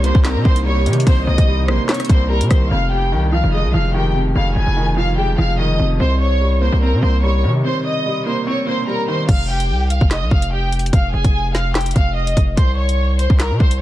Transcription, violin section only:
0.04 0.22 C5 medium
0.04 0.23 C6 medium
0.25 0.43 A#4 medium
0.25 0.43 A#5 medium
0.45 0.63 C5 medium
0.45 0.64 C6 medium
0.66 0.84 C#5 loud
0.66 0.84 C#6 medium
1.07 1.25 C5 loud
1.07 1.25 C6 medium
1.27 1.66 D#5 medium
1.27 1.66 D#6 medium
1.68 1.86 C5 medium
1.68 1.87 C6 medium
1.89 2.07 C#5 medium
1.89 2.07 C#6 medium
2.09 2.28 C5 medium
2.09 2.28 C6 medium
2.30 2.48 A#4 medium
2.30 2.48 A#5 medium
2.51 2.69 C5 medium
2.51 2.69 C6 medium
2.71 2.89 F5 medium
2.71 2.89 F6 medium
2.92 3.31 G4 medium
2.92 3.30 G5 medium
3.33 3.51 F5 medium
3.33 3.51 F6 medium
3.53 3.71 D#5 medium
3.53 3.72 D#6 medium
3.74 3.92 F5 medium
3.74 3.92 F6 medium
3.94 4.13 G4 medium
3.94 4.13 G5 medium
4.35 4.54 F5 medium
4.35 4.54 F6 medium
4.56 4.95 G#4 medium
4.56 4.95 G#5 medium
4.97 5.15 F5 medium
4.97 5.16 F6 medium
5.18 5.36 G4 medium
5.18 5.36 G5 medium
5.38 5.56 F5 medium
5.38 5.57 F6 medium
5.59 5.77 D#5 medium
5.59 5.77 D#6 medium
6.00 6.18 C5 medium
6.00 6.18 C6 medium
6.20 6.59 C#5 medium
6.20 6.59 C#6 medium
6.62 6.80 C5 medium
6.62 6.80 C6 medium
6.82 7.00 A#4 medium
6.82 7.01 A#5 medium
7.02 7.21 C5 medium
7.02 7.21 C6 medium
7.23 7.41 C#5 medium
7.23 7.42 C#6 medium
7.64 7.82 C5 medium
7.64 7.83 C6 medium
7.85 8.24 D#5 medium
7.85 8.24 D#6 medium
8.26 8.44 C5 medium
8.26 8.44 C6 medium
8.47 8.65 C#5 medium
8.47 8.65 C#6 medium
8.67 8.85 C5 medium
8.67 8.86 C6 medium
8.87 9.06 A#4 medium
8.87 9.06 A#5 medium
9.08 9.26 C5 medium
9.08 9.27 C6 medium
9.28 9.47 F5 medium
9.28 9.47 F6 medium
9.49 9.88 G4 medium
9.49 9.88 G5 medium
9.90 10.08 F5 medium
9.90 10.09 F6 medium
10.11 10.29 D#5 medium
10.11 10.29 D#6 medium
10.31 10.49 F5 medium
10.31 10.50 F6 medium
10.52 10.70 G4 medium
10.52 10.70 G5 medium
10.93 11.11 F5 medium
10.93 11.11 F6 medium
11.14 11.53 G#4 medium
11.14 11.52 G#5 loud
11.55 11.73 F5 medium
11.55 11.73 F6 medium
11.75 11.94 G4 medium
11.75 11.93 G5 medium
11.96 12.14 F5 medium
11.96 12.14 F6 medium
12.16 12.34 D#5 medium
12.16 12.35 D#6 medium
12.57 12.75 C5 loud
12.57 12.76 C6 medium
12.78 13.17 C#5 medium
12.78 13.17 C#6 medium
13.19 13.37 C5 medium
13.19 13.38 C6 medium
13.40 13.58 A#4 medium
13.40 13.58 A#5 medium
13.60 13.78 C5 medium
13.60 13.79 C6 medium

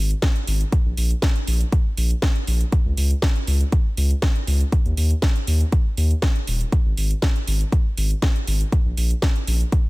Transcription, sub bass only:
0.00 0.14 G#1 medium
0.47 0.64 G#1 medium
0.86 0.93 A#1 loud
0.97 1.14 A#1 medium
1.47 1.64 A#1 medium
1.97 2.14 A#1 loud
2.47 2.64 A#1 medium
2.86 2.93 C#2 loud
2.97 3.14 C#2 medium
3.47 3.64 C#2 medium
3.97 4.14 C#2 medium
4.47 4.64 C#2 medium
4.86 4.93 D#2 loud
4.97 5.14 D#2 medium
5.47 5.64 D#2 medium
5.97 6.14 D#2 medium
6.47 6.64 D#1 medium
6.86 6.93 G#1 loud
6.97 7.14 G#1 medium
7.47 7.64 G#1 medium
7.97 8.14 G#1 medium
8.47 8.64 G#1 medium
8.86 8.93 A#1 loud
8.97 9.14 A#1 medium
9.47 9.64 A#1 medium

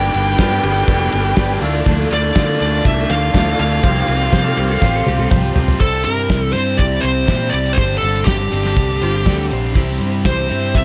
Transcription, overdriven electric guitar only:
0.00 0.39 G2 medium
0.00 0.39 D3 medium
0.00 0.14 G3 loud
0.00 0.14 B3 medium
0.00 0.14 D4 loud
0.00 0.12 G4 loud
0.13 0.37 G3 medium
0.13 0.38 B3 medium
0.13 0.39 D4 medium
0.13 0.39 G4 medium
0.38 0.64 G3 medium
0.38 0.64 B3 medium
0.38 0.63 D4 medium
0.38 0.62 G4 loud
0.63 1.37 G3 medium
0.63 1.37 B3 medium
0.63 1.37 D4 medium
0.63 1.38 G4 medium
1.37 1.60 G2 medium
1.37 1.61 D3 medium
1.37 1.61 G3 medium
1.37 1.61 B3 loud
1.37 1.61 D4 loud
1.37 1.61 G4 loud
1.61 1.84 D3 medium
1.61 1.85 A3 medium
1.61 1.86 D4 medium
1.61 1.87 F4 medium
1.85 2.34 D3 medium
1.85 2.11 A3 medium
1.85 2.10 D4 medium
1.85 2.10 F4 loud
2.10 2.35 A3 medium
2.10 2.36 D4 medium
2.10 2.38 F4 medium
2.36 2.85 D3 medium
2.36 2.61 A3 medium
2.36 2.61 D4 medium
2.36 2.60 F4 medium
2.61 3.33 A3 medium
2.61 3.34 D4 medium
2.61 3.35 F4 medium
3.34 3.82 D3 medium
3.34 3.60 A3 medium
3.34 3.58 D4 medium
3.34 3.57 F4 loud
3.58 3.83 A3 medium
3.58 3.82 D4 medium
3.58 3.82 F4 medium
3.83 4.32 C3 loud
3.83 4.31 F3 medium
3.83 4.09 G3 loud
3.83 4.08 C4 medium
3.83 4.06 F4 medium
4.07 4.32 G3 medium
4.07 4.33 C4 medium
4.07 4.33 F4 medium
4.32 4.82 F3 medium
4.32 4.58 G3 medium
4.32 4.58 C4 medium
4.32 4.56 F4 medium
4.57 5.30 G3 medium
4.57 5.31 C4 medium
4.57 5.31 F4 medium
5.30 5.78 C3 medium
5.30 5.79 F3 medium
5.30 5.56 G3 medium
5.30 5.55 C4 loud
5.30 5.54 F4 loud
5.55 5.79 G3 medium
5.55 5.79 C4 medium
5.55 5.78 F4 medium
5.80 6.53 C3 medium
5.80 6.55 G3 medium
5.80 6.54 C4 medium
5.80 6.53 E4 medium
5.80 6.54 G4 medium
6.54 7.26 C3 medium
6.54 7.28 G3 medium
6.54 7.28 C4 medium
6.54 7.27 E4 medium
6.54 7.29 G4 medium
7.27 7.76 C3 medium
7.27 7.77 G3 medium
7.27 7.77 C4 medium
7.27 7.77 E4 medium
7.27 7.78 G4 medium
7.76 8.50 G2 medium
7.76 8.50 D3 medium
7.76 8.52 G3 medium
7.76 8.51 C4 medium
7.76 8.50 D4 medium
7.76 8.50 G4 medium
8.51 9.23 G2 medium
8.51 9.24 D3 medium
8.51 9.25 G3 medium
8.51 9.26 C4 medium
8.51 9.24 D4 medium
8.51 9.27 G4 medium
9.24 9.73 G2 medium
9.24 9.73 D3 medium
9.24 9.74 G3 medium
9.24 9.74 C4 medium
9.24 9.74 D4 medium
9.24 9.75 G4 medium
9.73 10.47 C3 medium
9.73 10.50 G3 medium
9.73 10.50 C4 medium
9.73 10.48 E4 medium
9.73 10.48 G4 medium
10.48 10.85 C3 medium
10.48 10.85 G3 medium
10.48 10.85 C4 medium
10.48 10.85 E4 medium
10.48 10.85 G4 medium

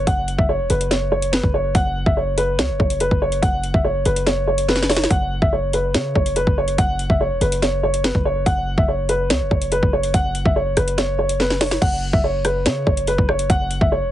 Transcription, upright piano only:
0.07 0.37 F#5 loud
0.38 0.48 E5 medium
0.49 0.68 C#5 medium
0.70 0.89 B4 medium
0.91 1.10 C#5 medium
1.12 1.31 C#5 medium
1.32 1.51 B4 medium
1.54 1.73 C#5 medium
1.75 2.05 F#5 loud
2.06 2.16 E5 medium
2.17 2.36 C#5 medium
2.38 2.56 B4 medium
2.59 2.78 C#5 medium
2.80 2.98 C#5 medium
3.01 3.19 B4 medium
3.22 3.41 C#5 medium
3.42 3.72 F#5 loud
3.74 3.84 E5 medium
3.85 4.03 C#5 medium
4.06 4.24 B4 medium
4.27 4.46 C#5 medium
4.48 4.66 C#5 medium
4.69 4.88 B4 medium
4.90 5.09 C#5 medium
5.10 5.40 F#5 loud
5.42 5.51 E5 medium
5.53 5.71 C#5 medium
5.74 5.92 B4 medium
5.95 6.13 C#5 medium
6.15 6.34 C#5 medium
6.36 6.55 B4 medium
6.58 6.76 C#5 medium
6.78 7.08 F#5 loud
7.10 7.19 E5 medium
7.21 7.39 C#5 medium
7.41 7.60 B4 medium
7.63 7.81 C#5 medium
7.83 8.02 C#5 medium
8.04 8.23 B4 medium
8.25 8.44 C#5 medium
8.46 8.76 F#5 loud
8.78 8.87 E5 medium
8.88 9.07 C#5 medium
9.09 9.28 B4 medium
9.30 9.49 C#5 medium
9.51 9.70 C#5 medium
9.72 9.91 B4 medium
9.93 10.12 C#5 medium
10.14 10.44 F#5 loud
10.46 10.55 E5 medium
10.56 10.75 C#5 medium
10.77 10.96 B4 medium
10.98 11.17 C#5 medium
11.19 11.38 C#5 medium
11.40 11.59 B4 medium
11.61 11.80 C#5 medium
11.82 12.11 F#5 loud
12.13 12.23 E5 medium
12.24 12.43 C#5 medium
12.45 12.64 B4 medium
12.66 12.85 C#5 medium
12.87 13.06 C#5 medium
13.08 13.26 B4 medium
13.29 13.48 C#5 medium
13.50 13.79 F#5 loud
13.81 13.90 E5 medium
13.92 14.11 C#5 medium

